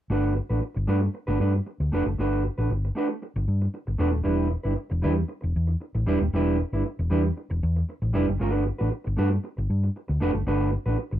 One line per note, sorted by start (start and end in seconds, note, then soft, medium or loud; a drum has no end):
0.10 0.38 G1 medium
0.10 0.34 A3 medium
0.10 0.35 D4 medium
0.10 0.35 F#4 medium
0.10 0.35 B4 medium
0.36 muted clean electric guitar stroke soft
0.50 0.59 A1 medium
0.50 0.60 A3 soft
0.50 0.61 D4 soft
0.50 0.61 F#4 soft
0.50 0.62 B4 soft
0.62 muted clean electric guitar stroke soft
0.75 0.85 G1 medium
0.75 muted clean electric guitar stroke soft
0.87 1.07 G2 medium
0.87 1.04 A3 medium
0.87 1.02 D4 medium
0.87 1.01 F#4 medium
0.87 1.00 B4 medium
1.02 muted clean electric guitar stroke soft
1.14 muted clean electric guitar stroke soft
1.27 1.37 G1 medium
1.27 1.39 A3 medium
1.27 1.40 D4 medium
1.27 1.40 F#4 medium
1.27 1.41 B4 medium
1.40 1.59 G2 medium
1.40 1.53 A3 medium
1.40 1.54 D4 medium
1.40 1.54 F#4 medium
1.40 1.54 B4 medium
1.55 muted clean electric guitar stroke soft
1.66 muted clean electric guitar stroke soft
1.80 1.89 D2 medium
1.80 muted clean electric guitar stroke soft
1.92 2.02 F1 medium
1.92 2.09 A3 medium
1.92 2.06 D4 medium
1.92 2.06 F#4 medium
1.92 2.05 B4 medium
2.06 2.15 F#1 medium
2.06 muted clean electric guitar stroke soft
2.18 2.47 G1 medium
2.18 2.42 A3 medium
2.18 2.43 D4 medium
2.18 2.43 F#4 medium
2.18 2.44 B4 medium
2.45 muted clean electric guitar stroke soft
2.58 2.67 A1 medium
2.58 2.70 A3 soft
2.58 2.70 D4 soft
2.58 2.70 F#4 medium
2.58 2.69 B4 medium
2.70 2.89 G1 medium
2.70 muted clean electric guitar stroke soft
2.85 muted clean electric guitar stroke soft
2.95 3.12 A3 medium
2.95 3.10 D4 medium
2.95 3.09 F#4 medium
2.95 3.09 B4 medium
3.10 muted clean electric guitar stroke soft
3.22 muted clean electric guitar stroke soft
3.36 3.45 G1 medium
3.36 muted clean electric guitar stroke soft
3.48 3.67 G2 medium
3.62 muted clean electric guitar stroke soft
3.74 muted clean electric guitar stroke soft
3.87 3.96 G1 medium
3.87 muted clean electric guitar stroke soft
3.98 4.13 E1 medium
3.98 4.16 A3 medium
3.98 4.12 D4 medium
3.98 4.12 F#4 medium
3.98 4.10 B4 medium
4.11 4.22 D#1 medium
4.11 muted clean electric guitar stroke soft
4.23 4.54 E1 medium
4.23 4.49 G3 medium
4.23 4.49 D4 medium
4.23 4.49 E4 medium
4.23 4.49 B4 medium
4.50 muted clean electric guitar stroke medium
4.64 4.74 G1 medium
4.64 4.74 G3 soft
4.64 4.75 D4 soft
4.64 4.75 E4 medium
4.64 4.75 B4 medium
4.76 muted clean electric guitar stroke soft
4.90 5.05 E1 loud
4.90 muted clean electric guitar stroke medium
5.02 5.22 E2 medium
5.02 5.19 G3 medium
5.02 5.16 D4 medium
5.02 5.15 E4 medium
5.02 5.14 B4 medium
5.16 muted clean electric guitar stroke soft
5.28 muted clean electric guitar stroke soft
5.41 5.52 E1 loud
5.41 muted clean electric guitar stroke soft
5.56 5.74 E2 medium
5.67 muted clean electric guitar stroke soft
5.80 muted clean electric guitar stroke soft
5.95 6.04 A1 medium
5.95 muted clean electric guitar stroke soft
6.06 6.17 E1 medium
6.06 6.23 G3 medium
6.06 6.21 D4 medium
6.06 6.21 E4 medium
6.06 6.20 B4 loud
6.21 6.30 D#1 medium
6.21 muted clean electric guitar stroke soft
6.33 6.61 E1 loud
6.33 6.57 G3 medium
6.33 6.58 D4 medium
6.33 6.58 E4 medium
6.33 6.58 B4 loud
6.61 muted clean electric guitar stroke soft
6.73 6.81 G1 medium
6.73 6.84 G3 soft
6.73 6.84 D4 medium
6.73 6.85 E4 medium
6.73 6.85 B4 medium
6.86 muted clean electric guitar stroke soft
6.99 7.08 E1 medium
6.99 muted clean electric guitar stroke soft
7.10 7.29 E2 loud
7.10 7.27 G3 medium
7.10 7.24 D4 medium
7.10 7.24 E4 medium
7.10 7.24 B4 medium
7.25 muted clean electric guitar stroke soft
7.37 muted clean electric guitar stroke soft
7.50 7.59 E1 loud
7.50 muted clean electric guitar stroke soft
7.63 7.81 E2 loud
7.76 muted clean electric guitar stroke medium
7.89 muted clean electric guitar stroke soft
8.02 8.11 A1 medium
8.02 muted clean electric guitar stroke soft
8.13 8.24 F1 medium
8.13 8.30 G3 medium
8.13 8.28 D4 medium
8.13 8.27 E4 medium
8.13 8.27 B4 loud
8.28 8.37 F#1 medium
8.28 muted clean electric guitar stroke soft
8.39 8.69 G1 medium
8.39 8.64 A3 medium
8.39 8.65 D4 medium
8.39 8.65 F#4 medium
8.39 8.65 B4 medium
8.66 muted clean electric guitar stroke soft
8.78 8.89 A1 medium
8.78 8.90 A3 soft
8.78 8.90 D4 soft
8.78 8.91 F#4 medium
8.78 8.91 B4 medium
8.91 muted clean electric guitar stroke soft
9.04 9.15 G1 medium
9.04 muted clean electric guitar stroke soft
9.17 9.37 G2 loud
9.17 9.33 A3 medium
9.17 9.31 D4 medium
9.17 9.31 F#4 medium
9.17 9.30 B4 medium
9.31 muted clean electric guitar stroke soft
9.44 muted clean electric guitar stroke medium
9.57 9.66 G1 medium
9.57 muted clean electric guitar stroke soft
9.70 9.88 G2 medium
9.83 muted clean electric guitar stroke soft
9.96 muted clean electric guitar stroke soft
10.08 10.18 D2 medium
10.08 muted clean electric guitar stroke medium
10.20 10.31 F1 medium
10.20 10.37 A3 medium
10.20 10.33 D4 medium
10.20 10.33 F#4 medium
10.20 10.32 B4 loud
10.33 10.43 F#1 medium
10.33 muted clean electric guitar stroke soft
10.47 10.75 G1 medium
10.47 10.71 A3 medium
10.47 10.71 D4 medium
10.47 10.71 F#4 medium
10.47 10.71 B4 medium
10.72 muted clean electric guitar stroke soft
10.86 10.95 A1 medium
10.86 10.97 A3 soft
10.86 10.98 D4 medium
10.86 10.98 F#4 medium
10.86 10.98 B4 medium
10.99 muted clean electric guitar stroke soft
11.11 11.20 G1 medium
11.11 muted clean electric guitar stroke soft